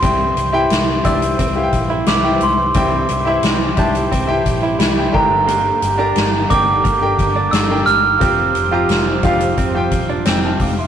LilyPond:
<<
  \new Staff \with { instrumentName = "Glockenspiel" } { \time 4/4 \key c \mixolydian \tempo 4 = 88 c'''4. e'''4. d'''8 c'''8~ | c'''4. r2 bes''8~ | bes''4. d'''4. e'''8 f'''8~ | f'''4. r2 r8 | }
  \new Staff \with { instrumentName = "Grand piano" } { \time 4/4 \key c \mixolydian << { <e' g' c'' g''>8 r16 <e' g' c'' g''>8 r16 <e' g' c'' d''>8 r16 <e' g' c'' f'' g''>8. r16 <e' g' c'' g''>8 r16 | <e' g' c'' g''>8 r16 <e' g' c'' e''>8 r16 <e' g' c'' a''>8 r16 <e' g' c'' g''>8. r16 <e' g' c'' g''>16 <d' g' bes' g''>8~ | <d' g' bes' g''>8 r16 <d' g' bes' bes''>8 r16 <d' g' bes' g''>8 r16 <d' g' bes' g''>8. r16 <d' g' bes' g''>8 r16 | <f' g' c'' g''>8 r16 <f' g' c'' bes''>8 r16 <f' g' c'' f''>8 r16 <f' g' c'' g''>8. <g'' e'''>4 | } \\ { g,4. r2 r8 | g,4. r2 <g, d>8~ | <g, d>4 r2. | c4. r4. <bes'' g'''>16 <a'' f'''>16 <f'' d'''>16 <e'' c'''>16 | } >> }
  \new Staff \with { instrumentName = "Clean electric guitar" } { \time 4/4 \key c \mixolydian c'8 r16 e'8 r16 d'16 r16 c'16 r8 e'16 e'8. r16 | c'8 r16 e'8 r16 d'16 r16 c'16 r8 e'16 e'8. r16 | bes8 r16 d'8 r16 c'16 r16 bes16 r8 d'16 d'8. r16 | c'8 r16 f'8 r16 d'16 r16 c'16 r8 d'16 c'8. r16 | }
  \new Staff \with { instrumentName = "Analog synth pad" } { \time 4/4 \key c \mixolydian << { g'1~ | g'1~ | g'1~ | g'1 | } \\ { <e c'>1~ | <e c'>2.~ <e c'>8 <d bes>8~ | <d bes>1 | <f c'>1 | } >> }
  \new Staff \with { instrumentName = "Picked electric bass" } { \clef bass \time 4/4 \key c \mixolydian c,8 c,8 c,8 c,8 c,8 bes,,8 c,8 c,8 | c,8 c,8 c,8 c,8 c,8 bes,,8 c,8 g,,8~ | g,,8 g,,8 g,,8 g,,8 g,,8 g,,8 g,,8 g,,8 | f,,8 f,,8 f,,8 f,,8 f,,8 e,,8 f,,8 f,,8 | }
  \new DrumStaff \with { instrumentName = "Drums" } \drummode { \time 4/4 <hh bd>8 hh8 <hh sn>8 <hh bd>16 hh16 <hh bd>8 <hh bd>8 <hh sn>8 hh8 | <hh bd>8 hh8 <hh sn>8 <hh bd>16 hh16 <hh bd>8 <hh bd>8 <hh sn>8 <cymc bd>8 | hh8 hh8 <hh sn>8 <hh bd>8 <hh bd>8 <hh bd>8 <hh sn>8 hh8 | <hh bd>8 hh8 <hh sn>8 <hh bd>16 hh16 <hh bd>8 <hh bd>8 <hh sn>8 <hho bd>8 | }
>>